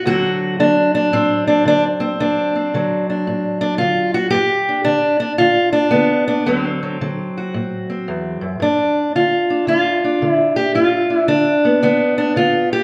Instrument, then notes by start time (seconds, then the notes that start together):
steel-string acoustic guitar
0.05 D2 D3 F#3 C4 F#4
0.60 D3 D4
0.95 D4
1.13 A2 C4
1.47 D4
1.66 D3 D4
2.00 C4
2.20 D2 D4
2.56 C4
2.74 D3 F#3
3.10 D4
3.27 A2
3.61 D4
3.78 D3 F4
4.14 F#4
4.31 G2 G4
4.69 D4
4.84 D3 D4
5.20 D4
5.38 D3 F4
5.73 D4
5.91 D3 B3
6.28 D4
6.46 D2 D3 F#3 B3
6.58 C4
6.83 F#3
7.01 D3 F#3
7.38 F#4
7.54 A2
7.90 C4
8.08 E2
8.41 F#2
8.60 G2 D4
9.15 D3 F4
9.50 D4
9.67 D3 F4
10.04 D4
10.22 D3
10.29 E4
10.56 G4
10.75 G2 F4
11.10 D4
11.15 E4
11.28 D3 D4
11.65 B3
11.83 D3 B3
12.18 D4
12.36 D3 F4
12.73 G4